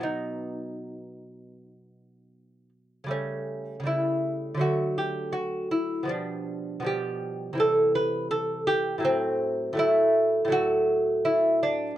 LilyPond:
<<
  \new Staff \with { instrumentName = "Lute" } { \time 4/4 \key b \phrygian \tempo 4 = 81 dis'2.~ dis'8 r8 | cis'4 e'4 fis'8 g'8 fis'8 e'8 | d'4 g'4 a'8 b'8 a'8 g'8 | c'4 e'4 fis'4 e'8 d'8 | }
  \new Staff \with { instrumentName = "Lute" } { \clef bass \time 4/4 \key b \phrygian <b, fis b>1 | <cis g a>4 <cis g a>4 <d fis a>2 | <b, f g>4 <b, f g>4 <c e g>2 | <a, fis a>4 <a, fis a>4 <a, fis a>2 | }
>>